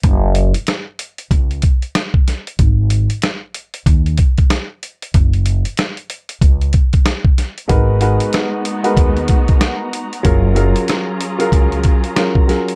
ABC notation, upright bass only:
X:1
M:4/4
L:1/16
Q:"Swing 16ths" 1/4=94
K:F#
V:1 name="Upright bass" clef=bass
F,,,3 z4 z C,,2 z6 | G,,,3 z4 z D,,2 z6 | F,,,3 z4 z C,,2 z6 | G,,,3 z4 z D,,2 z6 |
F,,,3 z4 z C,,2 z6 |]